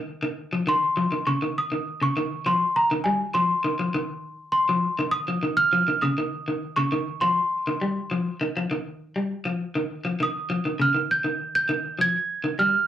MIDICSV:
0, 0, Header, 1, 3, 480
1, 0, Start_track
1, 0, Tempo, 595829
1, 300, Time_signature, 4, 2, 24, 8
1, 10369, End_track
2, 0, Start_track
2, 0, Title_t, "Celesta"
2, 0, Program_c, 0, 8
2, 552, Note_on_c, 0, 84, 84
2, 1021, Note_on_c, 0, 85, 82
2, 1041, Note_off_c, 0, 84, 0
2, 1129, Note_off_c, 0, 85, 0
2, 1273, Note_on_c, 0, 87, 86
2, 1605, Note_off_c, 0, 87, 0
2, 1632, Note_on_c, 0, 85, 92
2, 1985, Note_on_c, 0, 84, 86
2, 1997, Note_off_c, 0, 85, 0
2, 2224, Note_on_c, 0, 82, 93
2, 2231, Note_off_c, 0, 84, 0
2, 2332, Note_off_c, 0, 82, 0
2, 2448, Note_on_c, 0, 80, 83
2, 2560, Note_off_c, 0, 80, 0
2, 2691, Note_on_c, 0, 84, 90
2, 3625, Note_off_c, 0, 84, 0
2, 3642, Note_on_c, 0, 84, 90
2, 4100, Note_off_c, 0, 84, 0
2, 4120, Note_on_c, 0, 87, 102
2, 4467, Note_off_c, 0, 87, 0
2, 4486, Note_on_c, 0, 89, 112
2, 4828, Note_off_c, 0, 89, 0
2, 4849, Note_on_c, 0, 87, 100
2, 5426, Note_off_c, 0, 87, 0
2, 5449, Note_on_c, 0, 85, 101
2, 5809, Note_on_c, 0, 84, 88
2, 5826, Note_off_c, 0, 85, 0
2, 6743, Note_off_c, 0, 84, 0
2, 8239, Note_on_c, 0, 87, 95
2, 8713, Note_on_c, 0, 89, 89
2, 8723, Note_off_c, 0, 87, 0
2, 8818, Note_off_c, 0, 89, 0
2, 8951, Note_on_c, 0, 91, 95
2, 9281, Note_off_c, 0, 91, 0
2, 9307, Note_on_c, 0, 91, 104
2, 9672, Note_off_c, 0, 91, 0
2, 9677, Note_on_c, 0, 92, 107
2, 10115, Note_off_c, 0, 92, 0
2, 10145, Note_on_c, 0, 89, 98
2, 10364, Note_off_c, 0, 89, 0
2, 10369, End_track
3, 0, Start_track
3, 0, Title_t, "Clean electric guitar"
3, 0, Program_c, 1, 27
3, 182, Note_on_c, 1, 51, 74
3, 245, Note_off_c, 1, 51, 0
3, 424, Note_on_c, 1, 53, 72
3, 487, Note_off_c, 1, 53, 0
3, 540, Note_on_c, 1, 51, 77
3, 669, Note_off_c, 1, 51, 0
3, 781, Note_on_c, 1, 53, 81
3, 846, Note_off_c, 1, 53, 0
3, 902, Note_on_c, 1, 51, 69
3, 965, Note_off_c, 1, 51, 0
3, 1023, Note_on_c, 1, 49, 72
3, 1088, Note_off_c, 1, 49, 0
3, 1146, Note_on_c, 1, 51, 68
3, 1273, Note_off_c, 1, 51, 0
3, 1384, Note_on_c, 1, 51, 69
3, 1512, Note_off_c, 1, 51, 0
3, 1624, Note_on_c, 1, 49, 73
3, 1687, Note_off_c, 1, 49, 0
3, 1746, Note_on_c, 1, 51, 85
3, 1873, Note_off_c, 1, 51, 0
3, 1982, Note_on_c, 1, 53, 76
3, 2110, Note_off_c, 1, 53, 0
3, 2346, Note_on_c, 1, 51, 74
3, 2409, Note_off_c, 1, 51, 0
3, 2462, Note_on_c, 1, 55, 75
3, 2590, Note_off_c, 1, 55, 0
3, 2697, Note_on_c, 1, 53, 80
3, 2827, Note_off_c, 1, 53, 0
3, 2936, Note_on_c, 1, 51, 71
3, 3003, Note_off_c, 1, 51, 0
3, 3057, Note_on_c, 1, 53, 75
3, 3122, Note_off_c, 1, 53, 0
3, 3178, Note_on_c, 1, 51, 83
3, 3307, Note_off_c, 1, 51, 0
3, 3779, Note_on_c, 1, 53, 74
3, 3908, Note_off_c, 1, 53, 0
3, 4018, Note_on_c, 1, 51, 81
3, 4083, Note_off_c, 1, 51, 0
3, 4255, Note_on_c, 1, 53, 72
3, 4321, Note_off_c, 1, 53, 0
3, 4372, Note_on_c, 1, 51, 73
3, 4503, Note_off_c, 1, 51, 0
3, 4614, Note_on_c, 1, 53, 81
3, 4681, Note_off_c, 1, 53, 0
3, 4737, Note_on_c, 1, 51, 74
3, 4802, Note_off_c, 1, 51, 0
3, 4856, Note_on_c, 1, 49, 78
3, 4923, Note_off_c, 1, 49, 0
3, 4979, Note_on_c, 1, 51, 74
3, 5108, Note_off_c, 1, 51, 0
3, 5219, Note_on_c, 1, 51, 69
3, 5349, Note_off_c, 1, 51, 0
3, 5458, Note_on_c, 1, 49, 76
3, 5523, Note_off_c, 1, 49, 0
3, 5576, Note_on_c, 1, 51, 87
3, 5706, Note_off_c, 1, 51, 0
3, 5815, Note_on_c, 1, 53, 80
3, 5945, Note_off_c, 1, 53, 0
3, 6181, Note_on_c, 1, 51, 71
3, 6245, Note_off_c, 1, 51, 0
3, 6296, Note_on_c, 1, 55, 71
3, 6425, Note_off_c, 1, 55, 0
3, 6536, Note_on_c, 1, 53, 80
3, 6666, Note_off_c, 1, 53, 0
3, 6775, Note_on_c, 1, 51, 77
3, 6842, Note_off_c, 1, 51, 0
3, 6902, Note_on_c, 1, 53, 74
3, 6965, Note_off_c, 1, 53, 0
3, 7018, Note_on_c, 1, 51, 83
3, 7147, Note_off_c, 1, 51, 0
3, 7378, Note_on_c, 1, 55, 67
3, 7508, Note_off_c, 1, 55, 0
3, 7616, Note_on_c, 1, 53, 69
3, 7746, Note_off_c, 1, 53, 0
3, 7858, Note_on_c, 1, 51, 75
3, 7922, Note_off_c, 1, 51, 0
3, 8095, Note_on_c, 1, 53, 70
3, 8160, Note_off_c, 1, 53, 0
3, 8219, Note_on_c, 1, 51, 77
3, 8347, Note_off_c, 1, 51, 0
3, 8457, Note_on_c, 1, 53, 82
3, 8523, Note_off_c, 1, 53, 0
3, 8582, Note_on_c, 1, 51, 70
3, 8645, Note_off_c, 1, 51, 0
3, 8697, Note_on_c, 1, 49, 76
3, 8762, Note_off_c, 1, 49, 0
3, 8817, Note_on_c, 1, 51, 67
3, 8946, Note_off_c, 1, 51, 0
3, 9058, Note_on_c, 1, 51, 69
3, 9187, Note_off_c, 1, 51, 0
3, 9418, Note_on_c, 1, 51, 85
3, 9546, Note_off_c, 1, 51, 0
3, 9656, Note_on_c, 1, 53, 73
3, 9784, Note_off_c, 1, 53, 0
3, 10021, Note_on_c, 1, 51, 69
3, 10083, Note_off_c, 1, 51, 0
3, 10142, Note_on_c, 1, 55, 77
3, 10268, Note_off_c, 1, 55, 0
3, 10369, End_track
0, 0, End_of_file